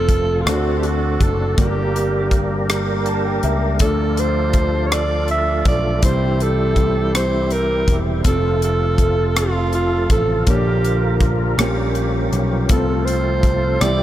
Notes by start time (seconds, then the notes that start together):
Already playing: F1 C3 F3 A3 C4 F4 A4 C5
0.09 kick, closed hi-hat
0.42 C4 D4 F4 F#4
0.46 D2 D3 C4 D4 F#4 A4 A#4, cross-stick, closed hi-hat
0.55 C5
0.79 G4
0.83 F#4, closed hi-hat
1.20 F#1 A4, kick, closed hi-hat
1.56 G1 G2 G3 A#3 D4 G4 A#4, kick, closed hi-hat
1.60 G4 D5
1.96 closed hi-hat
2.31 kick, closed hi-hat
2.70 cross-stick, closed hi-hat
3.06 A5, closed hi-hat
3.25 G5
3.43 C#2 E5, closed hi-hat
3.79 D2 D3 F3 A3 D4 F4 A4 D5, kick, closed hi-hat
4.17 C5, closed hi-hat
4.53 kick, closed hi-hat
4.87 C#5
4.92 D5, cross-stick, closed hi-hat
5.28 E5, closed hi-hat
5.65 B1 D5, kick, closed hi-hat
6.01 C2 C3 E3 G3 C4 E4 G4 C5, kick, closed hi-hat
6.40 A4, closed hi-hat
6.76 kick, closed hi-hat
7.15 C5, cross-stick, closed hi-hat
7.50 A#4, closed hi-hat
7.88 E1, kick, closed hi-hat
8.23 F1 F3 A3 C4 F4 G4 A4, kick, closed hi-hat
8.27 C5
8.32 A4
8.62 A4, closed hi-hat
8.98 kick, closed hi-hat
9.36 F4, cross-stick, closed hi-hat
9.73 F4, closed hi-hat
10.10 A1 A4, kick, closed hi-hat
10.46 A#1 A#2 D3 A#3 D4 F4 A#4 C#5, kick, closed hi-hat
10.50 G4 D5
10.85 closed hi-hat
11.21 kick, closed hi-hat
11.58 A#1 A#2 G3 A#3 C#4 F4 G4 A#4, cross-stick, closed hi-hat
11.95 closed hi-hat
12.32 B1, closed hi-hat
12.69 C2 C3 A3 C4 F4 A4 B4, kick, closed hi-hat
12.78 C5
13.05 C5, closed hi-hat
13.43 kick, closed hi-hat
13.80 C2 C3 E3 G3 C4 E4 G4 C5 D5, cross-stick, closed hi-hat